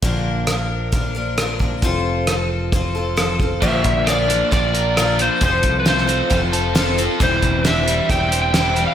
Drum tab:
CC |----------------|----------------|x---------------|----------------|
HH |x---x---x---x---|x---x---x---x---|--x-x-x-x-x-x-x-|x-x-x-x-x-x-x-x-|
SD |----r-------r---|----r-------r---|----r-------r---|----oo------o---|
BD |o-------o-----o-|o-------o-----o-|o-o-----o-------|o-o-----o-------|

CC |----------------|
HH |x-x-x-x-x-x-x-x-|
SD |----o-------o---|
BD |o-o-----o-------|